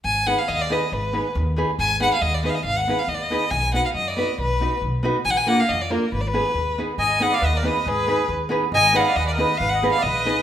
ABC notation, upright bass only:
X:1
M:2/4
L:1/8
Q:"Swing 16ths" 1/4=138
K:none
V:1 name="Upright bass" clef=bass
_A,,,2 _E,,2 | _A,,,2 _E,,2 | _A,,,2 _E,,2 | _A,,,2 _E,,2 |
B,,,2 ^F,,2 | B,,,2 B,,,2 | _B,,,2 F,,2 | _A,,,2 _E,,2 |
_A,,,2 _E,,2 | _A,,,2 _E,,2 | _A,,,2 _E,,2 | _A,,,2 _B,,,2 |]